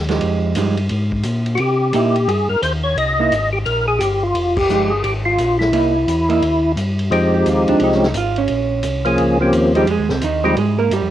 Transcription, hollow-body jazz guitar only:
0.09 0.53 F3 medium
0.09 0.53 G#3 medium
0.09 0.54 D#4 medium
0.09 0.54 G4 medium
0.57 0.76 F3 medium
0.57 0.76 G#3 medium
0.57 0.76 D#4 medium
0.57 0.76 G4 medium
1.94 2.14 A#3 medium
1.94 2.14 D#4 medium
1.94 2.14 E4 medium
3.19 3.31 A#3 medium
3.19 3.31 D#4 medium
3.19 3.32 E4 medium
4.70 4.90 F3 medium
4.70 4.90 G#3 medium
4.70 4.90 D#4 medium
4.70 4.90 G4 medium
5.73 5.93 A#3 medium
5.73 5.93 D#4 medium
5.73 5.93 E4 medium
6.29 6.41 A#3 medium
6.29 6.41 D#4 medium
6.29 6.42 E4 medium
7.34 7.49 G4 medium
7.49 7.69 F4 medium
7.69 7.81 D4 medium
7.84 7.95 D#4 medium
7.95 8.06 C#4 medium
8.06 8.16 D#4 medium
8.18 8.38 F4 medium
8.38 9.15 C#4 medium
9.76 9.88 G3 medium
9.76 9.88 G4 medium
9.90 10.10 G#3 medium
9.90 10.11 G#4 medium
10.11 10.23 C3 soft
10.11 10.22 C4 soft
10.24 10.45 D#3 medium
10.24 10.45 D#4 medium
10.44 10.57 G3 medium
10.44 10.56 G4 loud
10.58 10.79 G#3 medium
10.58 10.79 G#4 medium
10.79 10.91 A#3 medium
10.79 10.91 A#4 loud
10.93 11.11 G3 medium
10.93 11.11 G4 medium

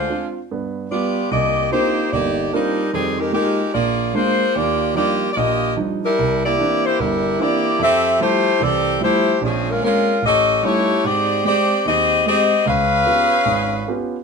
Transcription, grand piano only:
0.09 0.37 C4 soft
0.09 0.37 D4 soft
0.09 0.37 F4 medium
0.51 0.86 G2 medium
0.51 0.86 B3 medium
0.91 1.18 G3 soft
0.91 1.18 B3 soft
0.91 1.19 F4 soft
1.31 1.66 C2 medium
1.71 1.99 A#3 soft
1.71 1.99 C4 soft
1.71 1.99 D4 soft
1.71 1.99 D#4 soft
1.71 1.99 F4 medium
2.13 2.47 G1 medium
2.53 2.81 A#3 medium
2.53 2.81 C4 medium
2.53 2.81 D4 soft
2.53 2.81 D#4 soft
2.53 2.81 F4 medium
2.93 3.28 F2 medium
3.32 3.61 G#3 soft
3.32 3.61 A#3 soft
3.32 3.61 D#4 soft
3.32 3.61 F4 soft
3.32 3.61 G4 medium
3.74 4.09 A#1 medium
4.14 4.42 G#3 medium
4.14 4.42 A#3 medium
4.14 4.42 D4 medium
4.55 4.90 D#2 medium
4.95 5.23 F3 medium
4.95 5.23 G3 soft
4.95 5.23 D4 soft
4.95 5.23 D#4 medium
5.37 5.71 A#1 medium
5.77 6.04 F3 medium
5.77 6.04 G3 soft
5.77 6.04 D4 soft
5.77 6.04 D#4 medium
6.19 6.53 C2 medium
6.58 6.86 E3 medium
6.58 6.86 A#3 soft
6.58 6.86 C4 soft
6.58 6.86 D4 medium
7.00 7.34 G1 medium
7.39 7.67 E3 soft
7.39 7.66 A#3 soft
7.39 7.67 C4 soft
7.39 7.67 D4 medium
7.79 8.14 F2 medium
8.19 8.47 F3 soft
8.19 8.48 G3 soft
8.19 8.47 A3 soft
8.19 8.48 E4 medium
8.60 8.95 C2 medium
8.60 8.95 E3 medium
9.00 9.28 F3 medium
9.00 9.28 G3 medium
9.00 9.28 A3 soft
9.00 9.29 E4 medium
9.41 9.76 A#1 medium
9.81 10.09 G#3 soft
9.81 10.09 A#3 soft
9.81 10.09 C4 soft
9.81 10.09 C#4 medium
10.22 10.57 A1 medium
10.63 10.90 G3 medium
10.63 10.91 A3 soft
10.63 10.91 C#4 soft
10.63 10.91 D#4 medium
11.04 11.39 G#2 medium
11.44 11.72 G#3 medium
11.44 11.72 C4 soft
11.44 11.72 G4 medium
11.85 12.20 D#2 medium
12.26 12.53 G#3 medium
12.26 12.53 C4 medium
12.26 12.54 G4 medium
12.66 13.01 C#2 medium
13.06 13.34 B3 medium
13.06 13.34 C#4 soft
13.06 13.34 F4 soft
13.06 13.34 G4 medium
13.45 13.81 G#1 medium
13.88 14.15 B3 medium
13.88 14.15 C#4 soft
13.88 14.16 F4 soft
13.88 14.15 G4 medium

